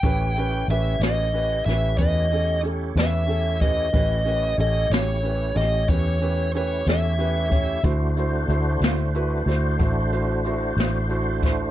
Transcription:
<<
  \new Staff \with { instrumentName = "Lead electric guitar" } { \time 12/8 \key a \mixolydian \tempo 4. = 61 g''4 e''8 dis''4 e''8 dis''4 r8 e''4 dis''8~ | dis''4 dis''8 cis''4 dis''8 cis''4 cis''8 e''4. | r1. | }
  \new Staff \with { instrumentName = "Grand piano" } { \time 12/8 \key a \mixolydian <cis' g' b'>8 <cis' g' b'>8 <cis' g' b'>8 <cis' g' b'>8 <cis' g' b'>8 <cis' g' b'>8 <cis' g' b'>8 <cis' g' a'>8 <cis' g' a'>8 <cis' g' b'>8 <cis' g' a'>8 <cis' g' b'>8 | <cis' g' b'>8 <cis' g' b'>8 <cis' g' a'>8 <cis' g' cis''>8 <cis' g' b'>8 <cis' g' cis''>8 <cis' g' b'>8 <cis' g' b'>8 <cis' g' b'>8 <cis' g' a'>8 <cis' g' b'>8 <cis' g' cis''>8 | <e' fis' c''>8 <e' fis' c''>8 <e' fis' c''>8 <e' fis' c''>8 <e' fis' b'>8 <e' fis' c''>8 <e' fis' c''>8 <e' fis' c''>8 <e' fis' c''>8 <e' fis' c''>8 <e' fis' c''>8 <e' fis' c''>8 | }
  \new Staff \with { instrumentName = "Tonewheel organ" } { \time 12/8 \key a \mixolydian <a e' g' cis''>1. | <a e' g' cis''>1. | <a d' fis' c''>1. | }
  \new Staff \with { instrumentName = "Fingered electric bass" } { \clef bass \time 12/8 \key a \mixolydian a,,4 a,,8 a,,4 a,,8 e,4. e,4. | a,,4 a,,8 a,,4 a,,8 e,4. e,4. | d,4 d,8 d,4 d,8 a,,4. a,,4. | }
  \new DrumStaff \with { instrumentName = "Drums" } \drummode { \time 12/8 <hh bd>8 hh8 hh8 <hh sn>8 hh8 <hh sn>8 <hh bd>8 hh8 hh8 <hh sn>8 hh8 <hh bd>8 | <hh bd>8 hh8 hh8 <hh sn>8 hh8 <hh sn>8 <hh bd>8 hh8 hh8 <hh sn>8 hh8 <hh bd>8 | <hh bd>8 hh8 hh8 <hh sn>8 hh8 <hh sn>8 <hh bd>8 hh8 hh8 <hh sn>8 hh8 <hh bd sn>8 | }
>>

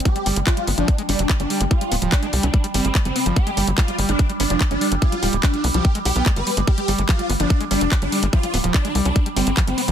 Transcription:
<<
  \new Staff \with { instrumentName = "Digital synth lead" } { \time 4/4 \tempo 4 = 145 g'8 r8 f'8 r16 d'8 r16 d'8 r16 d'8 r16 | f'8 r8 d'8 r16 d'8 r16 c'8 r16 c'8 r16 | g'8 r8 f'8 r16 d'8 r16 d'8 r16 d'8 r16 | f'8 r8 d'8 r16 g'8 r16 g'8 r16 b'8 r16 |
g'8 r8 f'8 r16 d'8 r16 d'8 r16 d'8 r16 | f'8 r8 d'8 r16 d'8 r16 c'8 r16 c'8 r16 | }
  \new Staff \with { instrumentName = "Acid bass" } { \clef bass \time 4/4 g16 g16 g16 aes16 g16 g16 b16 f16 g16 aes16 g16 f16 g16 g16 g16 aes16 | g16 g16 b16 f16 g16 aes16 g16 f16 g16 g16 g16 aes16 g16 g16 b16 f16 | g16 aes16 g16 f16 g16 g16 g16 aes16 g16 g16 b16 f16 g16 aes16 g16 f16 | g16 g16 g16 aes16 g16 g16 b16 f16 g16 aes16 g'16 b16 g16 g16 g16 aes16 |
g16 g16 g16 aes16 f16 g16 b16 f16 g16 aes16 g16 f16 g16 g16 g16 aes16 | f16 g16 b16 f16 g16 aes16 g16 f16 g16 g16 g16 aes16 f16 g16 b16 f16 | }
  \new Staff \with { instrumentName = "Synth drone" } { \clef bass \time 4/4 g1~ | g1~ | g1~ | g1~ |
g1~ | g1 | }
  \new Staff \with { instrumentName = "Analog synth bass" } { \clef bass \time 4/4 r8 g,,16 g,,16 r8 g,,16 g,,16 r8 g,,16 f,,16 r16 g,,16 r16 g,,16 | r8 d,,16 d,,16 r8 c,16 c,16 r8 g,,16 g,,16 r16 g,,16 r16 g,,16 | r8 g,,16 g,,16 r8 g,,16 g,,16 r8 g,,16 f,,16 r16 g,,16 r16 g,,16 | r8 d,,16 d,,16 r8 c,16 c,16 r8 b,,16 b,,16 r16 g,,16 r16 g,,16 |
r8 g,,16 g,,16 r8 g,,16 g,,16 r8 g,,16 f,,16 r16 g,,16 r16 g,,16 | r8 d,,16 d,,16 r8 c,16 c,16 r8 g,,16 g,,16 r16 g,,16 r16 g,,16 | }
  \new DrumStaff \with { instrumentName = "Drums" } \drummode { \time 4/4 <hh bd>16 hh16 hho16 hh16 <hc hh bd>16 hh16 hho16 hh16 <hh bd>16 hh16 hho16 hh16 <hc hh bd>16 hh16 hho16 hh16 | <hh bd>16 hh16 hho16 hh16 <hc hh bd>16 hh16 hho16 hh16 <hh bd>16 hh16 hho16 hh16 <hc hh bd>16 hh16 hho16 hh16 | <hh bd>16 hh16 hho16 hh16 <hc hh bd>16 hh16 hho16 hh16 <hh bd>16 hh16 hho16 hh16 <hc hh bd>16 hh16 hho16 hh16 | <hh bd>16 hh16 hho16 hh16 <hc hh bd>16 hh16 hho16 hh16 <hh bd>16 hh16 hho16 hh16 <hc hh bd>16 hh16 hho16 hh16 |
<hh bd>16 hh16 hho16 hh16 <hc hh bd>16 hh16 hho16 hh16 <hh bd>16 hh16 hho16 hh16 <hc hh bd>16 hh16 hho16 hh16 | <hh bd>16 hh16 hho16 hh16 <hc hh bd>16 hh16 hho16 hh16 <hh bd>16 hh16 hho16 hh16 <hc hh bd>16 hh16 hho16 hh16 | }
>>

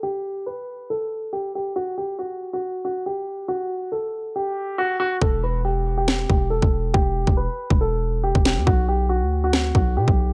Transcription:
<<
  \new Staff \with { instrumentName = "Grand piano" } { \time 4/4 \key e \minor \tempo 4 = 139 g'4 b'4 a'4 g'8 g'8 | fis'8 g'8 fis'8. fis'8. fis'8 g'4 | fis'4 a'4 g'4 fis'8 fis'8 | a'8 b'8 g'8. g'8. g'8 a'4 |
g'4 b'4 a'4 g'8 g'8 | fis'8 g'8 fis'8. fis'8. fis'8 g'4 | }
  \new Staff \with { instrumentName = "808-style bass" } { \clef bass \time 4/4 \key e \minor r1 | r1 | r1 | e,,2~ e,,8 e,,8. e,,8. |
e,,8. e,,8 r8 e,,4. e,,8 e,16 | b,,4~ b,,16 d,4~ d,16 b,,8 b,16 b,,8. | }
  \new DrumStaff \with { instrumentName = "Drums" } \drummode { \time 4/4 r4 r4 r4 r4 | r4 r4 r4 r4 | r4 r4 r4 r4 | bd4 r4 sn8 bd8 r16 bd8. |
bd8. bd16 r8. bd16 r4 r16 bd16 sn8 | bd4 r4 sn8 bd8 r16 bd8. | }
>>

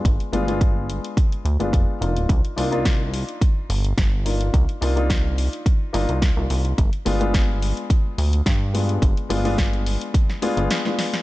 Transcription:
<<
  \new Staff \with { instrumentName = "Grand piano" } { \time 4/4 \key c \minor \tempo 4 = 107 <aes b d' f'>8 <aes b d' f'>16 <aes b d' f'>4.~ <aes b d' f'>16 r16 <aes b d' f'>8. <bes d' ees' f'>8~ | <bes d' ees' f'>8 <bes d' ees' f'>16 <bes d' ees' f'>2~ <bes d' ees' f'>8. <bes d' ees' f'>8~ | <bes d' ees' f'>8 <bes d' ees' f'>16 <bes d' ees' f'>4.~ <bes d' ees' f'>16 <bes d' ees' f'>8. <bes d' ees' f'>8. | r8 <aes b d' f'>16 <aes b d' f'>2~ <aes b d' f'>8. <aes b d' f'>8~ |
<aes b d' f'>8 <aes b d' f'>16 <aes b d' f'>4.~ <aes b d' f'>16 <aes b d' f'>8. <aes b d' f'>8. | }
  \new Staff \with { instrumentName = "Analog synth bass" } { \clef bass \time 4/4 \key c \minor g,,16 r16 g,,4~ g,,16 r8. d,16 g,,16 f,,16 r16 f,,16 d,,16 | c,16 r16 c,4~ c,16 r8. g,,8 g,,4 | c,16 r16 c,4~ c,16 r8. g,,16 c,8 c,16 c,8 | g,,16 r16 g,,4~ g,,16 r8. d,8 g,4 |
g,,16 r16 g,,4~ g,,16 r4 g,,16 r4 | }
  \new DrumStaff \with { instrumentName = "Drums" } \drummode { \time 4/4 <hh bd>16 hh16 hh16 hh16 <hh bd>8 hh16 hh16 <hh bd>16 hh16 hh16 hh16 <hh bd>8 hh16 hh16 | <hh bd>16 hh16 hho16 hh16 <hh bd sn>8 hho16 hh16 <hh bd>8 hho16 hh16 <hh bd sn>8 hho16 hh16 | <hh bd>16 hh16 hho16 hh16 <hh bd sn>8 hho16 hh16 <hh bd>8 hho16 hh16 <hh bd sn>8 hho16 hh16 | <hh bd>16 hh16 hho16 hh16 <hh bd sn>8 hho16 hh16 <hh bd>8 hho16 hh16 <hh bd sn>8 hho16 hh16 |
<hh bd>16 hh16 hho16 hho16 <hh bd sn>16 hh16 hho16 hh16 <hh bd>16 sn16 hho16 hh16 <hh sn>16 sn16 <hho sn>16 <hh sn>16 | }
>>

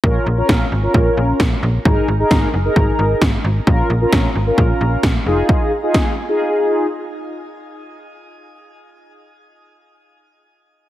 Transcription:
<<
  \new Staff \with { instrumentName = "Analog polysynth" } { \time 4/4 \key bes \minor \tempo 4 = 132 <des' f' bes'>8 r16 <des' f' bes'>8. r16 <des' f' bes'>4~ <des' f' bes'>16 r4 | <ees' aes' bes'>8 r16 <ees' aes' bes'>8. r16 <ees' aes' bes'>4~ <ees' aes' bes'>16 r4 | <des' f' bes'>8 r16 <des' f' bes'>8. r16 <des' f' bes'>4~ <des' f' bes'>16 r8 <ees' f' aes'>8~ | <ees' f' aes'>8 r16 <ees' f' aes'>8. r16 <ees' f' aes'>4~ <ees' f' aes'>16 r4 |
r1 | r1 | }
  \new Staff \with { instrumentName = "FM bass" } { \clef bass \time 4/4 \key bes \minor bes,,8 bes,,8 bes,,8 aes,,8 bes,,8 bes,,8 bes,,8 bes,,8 | aes,,8 aes,,8 aes,,8 ges,,8 aes,,8 aes,,8 aes,,8 aes,,8 | bes,,8 bes,,8 bes,,8 aes,,8 bes,,8 bes,,8 bes,,8 f,,8 | r1 |
r1 | r1 | }
  \new DrumStaff \with { instrumentName = "Drums" } \drummode { \time 4/4 bd4 <bd sn>4 bd4 <bd sn>4 | bd4 <bd sn>4 bd4 <bd sn>4 | bd4 <bd sn>4 bd4 <bd sn>4 | bd4 <bd sn>4 r4 r4 |
r4 r4 r4 r4 | r4 r4 r4 r4 | }
>>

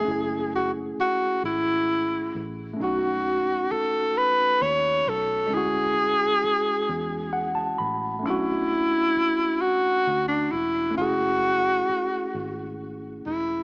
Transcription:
<<
  \new Staff \with { instrumentName = "Tenor saxophone" } { \time 6/8 \key fis \minor \tempo 4. = 44 gis'8 fis'8 fis'8 e'4 r8 | fis'4 a'8 b'8 cis''8 a'8 | gis'2~ gis'8 r8 | e'4. fis'8. d'16 e'8 |
fis'2 r8 e'8 | }
  \new Staff \with { instrumentName = "Tine electric piano" } { \time 6/8 \key fis \minor << { r2. | r2. | r2 fis''16 a''16 b''8 | r2. |
r2. | } \\ { <a cis' e' gis'>2. | <a cis' dis' fis'>2. | <gis cis' e' fis'>2. | <a cis' d' fis'>2. |
<a cis' e' gis'>2. | } >> }
  \new Staff \with { instrumentName = "Fingered electric bass" } { \clef bass \time 6/8 \key fis \minor fis,,4 r8 gis,,4 a,,8 | b,,4 r4 dis,8 b,,8 | d,4 r8 e,4 a,,8 | b,,4 r4 d,8 e,,8 |
fis,,4 r8 gis,,4 e,,8 | }
>>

